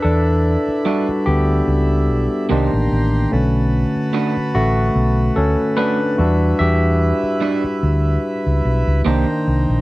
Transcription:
Already playing: tine electric piano D4 B4, harmonium E4 D5 E5 B5
0.02 fingered electric bass E2, tine electric piano D4 A4
0.68 muted fingered electric bass stroke
0.85 clean electric guitar G3 D4 E4 B4, tine electric piano G3 D4 F#4
1.09 muted fingered electric bass stroke
1.26 fingered electric bass D2, tine electric piano B3 G4
1.68 fingered electric bass C#2
2.09 fingered electric bass B1
2.49 fingered electric bass C2, tine electric piano D#3 A#3 D4, clean electric guitar A#3 D#4 G4 C5, harmonium G4 G5 A#5 C6
2.73 fingered electric bass A1
2.92 fingered electric bass A1
3.31 fingered electric bass B1, tine electric piano D3 A3 C#4, harmonium F#4 B4 A5 B5
3.96 muted fingered electric bass stroke
4.13 clean electric guitar A3 D4 F#4 B4
4.37 muted fingered electric bass stroke
4.55 fingered electric bass A1, tine electric piano A3 F#4
4.95 fingered electric bass B1
5.36 fingered electric bass D2, tine electric piano C#4 A4
5.77 clean electric guitar A3 D4 F#4 B4, tine electric piano D4 B4
6.18 fingered electric bass E2, tine electric piano G3 D4 F#4, harmonium E4 E5
6.59 fingered electric bass E2, tine electric piano G4 E5
7.23 muted fingered electric bass stroke
7.41 clean electric guitar G3 D4 E4 B4
7.64 muted fingered electric bass stroke
7.83 fingered electric bass D2
8.46 fingered electric bass C#2
8.65 fingered electric bass B1
8.87 fingered electric bass C#2
9.05 fingered electric bass C2, harmonium D#3 C5 G5 A#5, tine electric piano D#3 A#3 D4, clean electric guitar A#3 D#4 G4 C5
9.48 fingered electric bass C2
9.70 fingered electric bass A#1

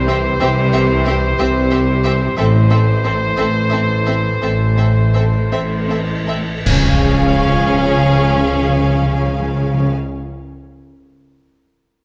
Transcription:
Already playing: double bass section C2, tuba C2, cello section C3, french horn section E3 G4, trumpet C5
0.07 viola section C4, violin section G4 E5
0.40 double bass section C2, tuba C2, cello section C3, viola section C4, violin section G4 E5
0.73 viola section C4, violin section G4 E5
1.06 viola section C4, violin section G4 E5
1.38 double bass section C2, tuba C2, cello section C3, viola section C4, violin section G4 E5
1.71 viola section C4, violin section G4 E5
2.04 viola section C4, violin section G4 E5
2.37 double bass section A1, tuba A1, cello section A2, french horn section E3 A4, viola section C4, violin section A4 E5, trumpet C5
2.70 viola section C4, violin section A4 E5
3.05 viola section C4, violin section A4 E5
3.37 tuba A1, double bass section A1, cello section A2, viola section C4, violin section A4 E5
3.70 viola section C4, violin section A4 E5
4.06 viola section C4, violin section A4 E5
4.42 tuba A1, double bass section A1, cello section A2, viola section C4, violin section A4 E5
4.77 viola section C4, violin section A4 E5
5.14 viola section C4, violin section A4 E5
5.51 double bass section A1, tuba A1, cello section A2, viola section C4, violin section A4 E5
5.87 viola section C4, violin section A4 E5
6.27 viola section C4, violin section A4 E5
6.64 tuba C#2, double bass section C#2, timpani C#3, cello section C#3, french horn section F3 G#4, viola section C#4, violin section G#4 F5, trumpet C#5, concert bass drum, crash, sub drop
6.72 timpani C#3
6.79 timpani C#3
6.85 timpani C#3
6.92 timpani C#3
6.99 timpani C#3
7.05 timpani C#3
7.12 timpani C#3
7.19 timpani C#3
7.25 timpani C#3
7.32 timpani C#3
7.39 timpani C#3
7.45 timpani C#3
7.52 timpani C#3
7.59 timpani C#3
7.66 timpani C#3
7.72 timpani C#3
7.79 timpani C#3
7.85 timpani C#3
7.92 timpani C#3
7.98 timpani C#3
8.04 timpani C#3
8.10 timpani C#3
8.17 timpani C#3
8.23 timpani C#3
8.30 timpani C#3
8.36 timpani C#3
8.43 timpani C#3
8.49 timpani C#3
8.56 timpani C#3
8.62 timpani C#3
8.69 timpani C#3
8.76 timpani C#3
8.82 timpani C#3
8.89 timpani C#3
8.95 timpani C#3
9.01 timpani C#3
9.08 timpani C#3
9.14 timpani C#3
9.21 timpani C#3
9.27 timpani C#3
9.35 timpani C#3
9.41 timpani C#3
9.48 timpani C#3
9.54 timpani C#3
9.61 timpani C#3
9.67 timpani C#3
9.74 timpani C#3
9.80 timpani C#3
9.87 timpani C#3

